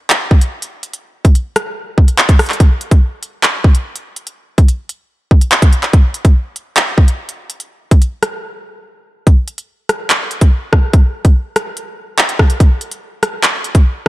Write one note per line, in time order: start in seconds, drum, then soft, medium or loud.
0.10 clap loud
0.31 kick medium
0.41 closed hi-hat medium
0.62 closed hi-hat medium
0.83 closed hi-hat medium
0.93 closed hi-hat medium
1.25 kick loud
1.25 closed hi-hat medium
1.35 closed hi-hat medium
1.56 cross-stick loud
1.56 closed hi-hat medium
1.98 kick medium
2.08 closed hi-hat medium
2.18 clap loud
2.29 kick medium
2.29 closed hi-hat medium
2.39 cross-stick loud
2.39 closed hi-hat soft
2.39 open hi-hat medium
2.46 clap medium
2.46 closed hi-hat medium
2.53 closed hi-hat medium
2.60 kick loud
2.60 closed hi-hat medium
2.81 closed hi-hat medium
2.91 kick loud
2.91 closed hi-hat medium
3.23 closed hi-hat medium
3.43 clap loud
3.64 kick medium
3.75 closed hi-hat medium
3.96 closed hi-hat medium
4.16 closed hi-hat medium
4.27 closed hi-hat medium
4.58 kick loud
4.58 closed hi-hat medium
4.68 closed hi-hat medium
4.89 closed hi-hat medium
5.31 kick medium
5.41 closed hi-hat medium
5.52 clap loud
5.62 kick loud
5.62 closed hi-hat medium
5.73 closed hi-hat medium
5.83 clap medium
5.93 kick loud
5.93 closed hi-hat medium
6.14 closed hi-hat medium
6.25 kick loud
6.25 closed hi-hat medium
6.56 closed hi-hat medium
6.77 clap loud
6.98 kick medium
7.08 closed hi-hat medium
7.29 closed hi-hat medium
7.50 closed hi-hat medium
7.60 closed hi-hat medium
7.91 kick loud
7.91 closed hi-hat medium
8.02 closed hi-hat medium
8.23 cross-stick medium
8.23 closed hi-hat medium
9.27 kick loud
9.27 closed hi-hat medium
9.48 closed hi-hat medium
9.58 closed hi-hat medium
9.89 cross-stick medium
9.89 closed hi-hat medium
10.10 clap loud
10.10 closed hi-hat medium
10.31 closed hi-hat medium
10.41 kick medium
10.41 closed hi-hat medium
10.73 kick medium
10.73 cross-stick loud
10.93 kick loud
10.93 closed hi-hat medium
11.25 kick medium
11.25 closed hi-hat medium
11.56 cross-stick loud
11.56 closed hi-hat medium
11.77 closed hi-hat medium
12.18 clap loud
12.29 closed hi-hat medium
12.39 kick medium
12.39 cross-stick loud
12.50 closed hi-hat medium
12.60 kick loud
12.60 closed hi-hat medium
12.81 closed hi-hat medium
12.91 closed hi-hat medium
13.23 cross-stick medium
13.23 closed hi-hat medium
13.43 clap loud
13.43 closed hi-hat medium
13.64 closed hi-hat medium
13.75 kick medium
13.75 closed hi-hat medium